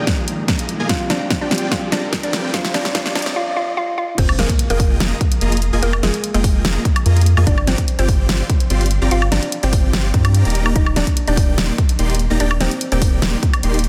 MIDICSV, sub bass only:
0, 0, Header, 1, 2, 480
1, 0, Start_track
1, 0, Key_signature, -3, "major"
1, 0, Tempo, 410959
1, 1044, Time_signature, 4, 2, 24, 8
1, 16220, End_track
2, 0, Start_track
2, 0, Title_t, "Sub bass"
2, 0, Program_c, 0, 38
2, 564, Note_on_c, 0, 41, 97
2, 904, Note_off_c, 0, 41, 0
2, 930, Note_on_c, 0, 41, 94
2, 1021, Note_off_c, 0, 41, 0
2, 4883, Note_on_c, 0, 29, 94
2, 5101, Note_off_c, 0, 29, 0
2, 5124, Note_on_c, 0, 29, 96
2, 5213, Note_off_c, 0, 29, 0
2, 5490, Note_on_c, 0, 29, 98
2, 5821, Note_off_c, 0, 29, 0
2, 5844, Note_on_c, 0, 29, 102
2, 5999, Note_off_c, 0, 29, 0
2, 6324, Note_on_c, 0, 29, 97
2, 6665, Note_off_c, 0, 29, 0
2, 6691, Note_on_c, 0, 29, 98
2, 6782, Note_off_c, 0, 29, 0
2, 6804, Note_on_c, 0, 29, 93
2, 7021, Note_off_c, 0, 29, 0
2, 7044, Note_on_c, 0, 29, 98
2, 7133, Note_off_c, 0, 29, 0
2, 7409, Note_on_c, 0, 29, 96
2, 7741, Note_off_c, 0, 29, 0
2, 7762, Note_on_c, 0, 29, 96
2, 7918, Note_off_c, 0, 29, 0
2, 8242, Note_on_c, 0, 41, 102
2, 8584, Note_off_c, 0, 41, 0
2, 8608, Note_on_c, 0, 41, 101
2, 8700, Note_off_c, 0, 41, 0
2, 8724, Note_on_c, 0, 31, 95
2, 8941, Note_off_c, 0, 31, 0
2, 8963, Note_on_c, 0, 31, 97
2, 9053, Note_off_c, 0, 31, 0
2, 9329, Note_on_c, 0, 31, 98
2, 9661, Note_off_c, 0, 31, 0
2, 9684, Note_on_c, 0, 31, 99
2, 9839, Note_off_c, 0, 31, 0
2, 10164, Note_on_c, 0, 31, 99
2, 10504, Note_off_c, 0, 31, 0
2, 10530, Note_on_c, 0, 31, 101
2, 10621, Note_off_c, 0, 31, 0
2, 10644, Note_on_c, 0, 31, 91
2, 10861, Note_off_c, 0, 31, 0
2, 10884, Note_on_c, 0, 31, 95
2, 10973, Note_off_c, 0, 31, 0
2, 11250, Note_on_c, 0, 31, 98
2, 11581, Note_off_c, 0, 31, 0
2, 11605, Note_on_c, 0, 31, 98
2, 11821, Note_off_c, 0, 31, 0
2, 11843, Note_on_c, 0, 43, 101
2, 12184, Note_off_c, 0, 43, 0
2, 12211, Note_on_c, 0, 27, 93
2, 12542, Note_off_c, 0, 27, 0
2, 12564, Note_on_c, 0, 27, 97
2, 12781, Note_off_c, 0, 27, 0
2, 12805, Note_on_c, 0, 27, 94
2, 12894, Note_off_c, 0, 27, 0
2, 13171, Note_on_c, 0, 27, 100
2, 13501, Note_off_c, 0, 27, 0
2, 13525, Note_on_c, 0, 27, 98
2, 13679, Note_off_c, 0, 27, 0
2, 14005, Note_on_c, 0, 27, 100
2, 14345, Note_off_c, 0, 27, 0
2, 14370, Note_on_c, 0, 27, 98
2, 14461, Note_off_c, 0, 27, 0
2, 14484, Note_on_c, 0, 27, 96
2, 14701, Note_off_c, 0, 27, 0
2, 14725, Note_on_c, 0, 27, 99
2, 14814, Note_off_c, 0, 27, 0
2, 15091, Note_on_c, 0, 27, 99
2, 15422, Note_off_c, 0, 27, 0
2, 15444, Note_on_c, 0, 27, 95
2, 15599, Note_off_c, 0, 27, 0
2, 15924, Note_on_c, 0, 27, 101
2, 16220, Note_off_c, 0, 27, 0
2, 16220, End_track
0, 0, End_of_file